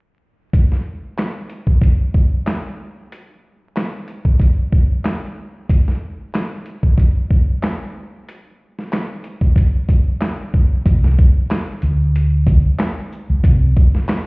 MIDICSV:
0, 0, Header, 1, 3, 480
1, 0, Start_track
1, 0, Tempo, 645161
1, 398, Time_signature, 4, 2, 24, 8
1, 10614, End_track
2, 0, Start_track
2, 0, Title_t, "Fingered electric bass"
2, 0, Program_c, 0, 33
2, 8079, Note_on_c, 0, 36, 109
2, 8290, Note_off_c, 0, 36, 0
2, 8800, Note_on_c, 0, 38, 90
2, 9381, Note_off_c, 0, 38, 0
2, 9892, Note_on_c, 0, 37, 96
2, 9987, Note_off_c, 0, 37, 0
2, 9999, Note_on_c, 0, 36, 105
2, 10210, Note_off_c, 0, 36, 0
2, 10614, End_track
3, 0, Start_track
3, 0, Title_t, "Drums"
3, 397, Note_on_c, 9, 36, 106
3, 403, Note_on_c, 9, 42, 94
3, 471, Note_off_c, 9, 36, 0
3, 478, Note_off_c, 9, 42, 0
3, 534, Note_on_c, 9, 38, 34
3, 608, Note_off_c, 9, 38, 0
3, 879, Note_on_c, 9, 42, 79
3, 882, Note_on_c, 9, 39, 76
3, 885, Note_on_c, 9, 38, 96
3, 953, Note_off_c, 9, 42, 0
3, 956, Note_off_c, 9, 39, 0
3, 959, Note_off_c, 9, 38, 0
3, 1113, Note_on_c, 9, 42, 46
3, 1187, Note_off_c, 9, 42, 0
3, 1242, Note_on_c, 9, 36, 83
3, 1316, Note_off_c, 9, 36, 0
3, 1351, Note_on_c, 9, 36, 103
3, 1364, Note_on_c, 9, 42, 89
3, 1425, Note_off_c, 9, 36, 0
3, 1438, Note_off_c, 9, 42, 0
3, 1595, Note_on_c, 9, 36, 99
3, 1669, Note_off_c, 9, 36, 0
3, 1835, Note_on_c, 9, 42, 67
3, 1838, Note_on_c, 9, 39, 95
3, 1841, Note_on_c, 9, 38, 114
3, 1909, Note_off_c, 9, 42, 0
3, 1912, Note_off_c, 9, 39, 0
3, 1915, Note_off_c, 9, 38, 0
3, 2323, Note_on_c, 9, 42, 95
3, 2398, Note_off_c, 9, 42, 0
3, 2800, Note_on_c, 9, 42, 76
3, 2803, Note_on_c, 9, 39, 78
3, 2806, Note_on_c, 9, 38, 98
3, 2875, Note_off_c, 9, 42, 0
3, 2877, Note_off_c, 9, 39, 0
3, 2881, Note_off_c, 9, 38, 0
3, 3033, Note_on_c, 9, 42, 46
3, 3108, Note_off_c, 9, 42, 0
3, 3162, Note_on_c, 9, 36, 83
3, 3236, Note_off_c, 9, 36, 0
3, 3270, Note_on_c, 9, 36, 99
3, 3283, Note_on_c, 9, 42, 90
3, 3345, Note_off_c, 9, 36, 0
3, 3358, Note_off_c, 9, 42, 0
3, 3515, Note_on_c, 9, 36, 103
3, 3589, Note_off_c, 9, 36, 0
3, 3755, Note_on_c, 9, 42, 70
3, 3758, Note_on_c, 9, 39, 89
3, 3761, Note_on_c, 9, 38, 112
3, 3830, Note_off_c, 9, 42, 0
3, 3832, Note_off_c, 9, 39, 0
3, 3835, Note_off_c, 9, 38, 0
3, 4237, Note_on_c, 9, 36, 109
3, 4243, Note_on_c, 9, 42, 97
3, 4311, Note_off_c, 9, 36, 0
3, 4317, Note_off_c, 9, 42, 0
3, 4374, Note_on_c, 9, 38, 34
3, 4449, Note_off_c, 9, 38, 0
3, 4720, Note_on_c, 9, 42, 81
3, 4722, Note_on_c, 9, 39, 78
3, 4725, Note_on_c, 9, 38, 103
3, 4794, Note_off_c, 9, 42, 0
3, 4797, Note_off_c, 9, 39, 0
3, 4800, Note_off_c, 9, 38, 0
3, 4953, Note_on_c, 9, 42, 45
3, 5027, Note_off_c, 9, 42, 0
3, 5082, Note_on_c, 9, 36, 81
3, 5156, Note_off_c, 9, 36, 0
3, 5191, Note_on_c, 9, 36, 100
3, 5204, Note_on_c, 9, 42, 95
3, 5265, Note_off_c, 9, 36, 0
3, 5278, Note_off_c, 9, 42, 0
3, 5435, Note_on_c, 9, 36, 100
3, 5510, Note_off_c, 9, 36, 0
3, 5676, Note_on_c, 9, 42, 71
3, 5678, Note_on_c, 9, 39, 94
3, 5681, Note_on_c, 9, 38, 116
3, 5750, Note_off_c, 9, 42, 0
3, 5753, Note_off_c, 9, 39, 0
3, 5756, Note_off_c, 9, 38, 0
3, 6164, Note_on_c, 9, 42, 96
3, 6239, Note_off_c, 9, 42, 0
3, 6537, Note_on_c, 9, 38, 37
3, 6612, Note_off_c, 9, 38, 0
3, 6641, Note_on_c, 9, 42, 80
3, 6644, Note_on_c, 9, 39, 78
3, 6647, Note_on_c, 9, 38, 98
3, 6715, Note_off_c, 9, 42, 0
3, 6718, Note_off_c, 9, 39, 0
3, 6721, Note_off_c, 9, 38, 0
3, 6874, Note_on_c, 9, 42, 46
3, 6949, Note_off_c, 9, 42, 0
3, 7003, Note_on_c, 9, 36, 85
3, 7077, Note_off_c, 9, 36, 0
3, 7111, Note_on_c, 9, 36, 104
3, 7125, Note_on_c, 9, 42, 94
3, 7186, Note_off_c, 9, 36, 0
3, 7199, Note_off_c, 9, 42, 0
3, 7356, Note_on_c, 9, 36, 104
3, 7365, Note_on_c, 9, 42, 54
3, 7430, Note_off_c, 9, 36, 0
3, 7439, Note_off_c, 9, 42, 0
3, 7596, Note_on_c, 9, 42, 68
3, 7599, Note_on_c, 9, 39, 91
3, 7602, Note_on_c, 9, 38, 117
3, 7671, Note_off_c, 9, 42, 0
3, 7673, Note_off_c, 9, 39, 0
3, 7676, Note_off_c, 9, 38, 0
3, 7841, Note_on_c, 9, 36, 95
3, 7915, Note_off_c, 9, 36, 0
3, 8078, Note_on_c, 9, 36, 113
3, 8084, Note_on_c, 9, 42, 102
3, 8152, Note_off_c, 9, 36, 0
3, 8158, Note_off_c, 9, 42, 0
3, 8215, Note_on_c, 9, 38, 37
3, 8290, Note_off_c, 9, 38, 0
3, 8320, Note_on_c, 9, 82, 67
3, 8323, Note_on_c, 9, 36, 95
3, 8394, Note_off_c, 9, 82, 0
3, 8397, Note_off_c, 9, 36, 0
3, 8561, Note_on_c, 9, 42, 82
3, 8563, Note_on_c, 9, 39, 84
3, 8566, Note_on_c, 9, 38, 106
3, 8635, Note_off_c, 9, 42, 0
3, 8637, Note_off_c, 9, 39, 0
3, 8641, Note_off_c, 9, 38, 0
3, 8794, Note_on_c, 9, 42, 50
3, 8794, Note_on_c, 9, 82, 49
3, 8868, Note_off_c, 9, 42, 0
3, 8868, Note_off_c, 9, 82, 0
3, 9044, Note_on_c, 9, 42, 97
3, 9119, Note_off_c, 9, 42, 0
3, 9275, Note_on_c, 9, 36, 103
3, 9284, Note_on_c, 9, 42, 53
3, 9284, Note_on_c, 9, 82, 53
3, 9350, Note_off_c, 9, 36, 0
3, 9358, Note_off_c, 9, 42, 0
3, 9358, Note_off_c, 9, 82, 0
3, 9516, Note_on_c, 9, 42, 73
3, 9518, Note_on_c, 9, 39, 99
3, 9521, Note_on_c, 9, 38, 119
3, 9590, Note_off_c, 9, 42, 0
3, 9593, Note_off_c, 9, 39, 0
3, 9596, Note_off_c, 9, 38, 0
3, 9763, Note_on_c, 9, 82, 55
3, 9837, Note_off_c, 9, 82, 0
3, 9997, Note_on_c, 9, 36, 113
3, 10003, Note_on_c, 9, 42, 100
3, 10072, Note_off_c, 9, 36, 0
3, 10078, Note_off_c, 9, 42, 0
3, 10239, Note_on_c, 9, 82, 65
3, 10242, Note_on_c, 9, 36, 91
3, 10313, Note_off_c, 9, 82, 0
3, 10317, Note_off_c, 9, 36, 0
3, 10377, Note_on_c, 9, 38, 38
3, 10451, Note_off_c, 9, 38, 0
3, 10480, Note_on_c, 9, 42, 84
3, 10482, Note_on_c, 9, 39, 83
3, 10485, Note_on_c, 9, 38, 104
3, 10554, Note_off_c, 9, 42, 0
3, 10556, Note_off_c, 9, 39, 0
3, 10560, Note_off_c, 9, 38, 0
3, 10614, End_track
0, 0, End_of_file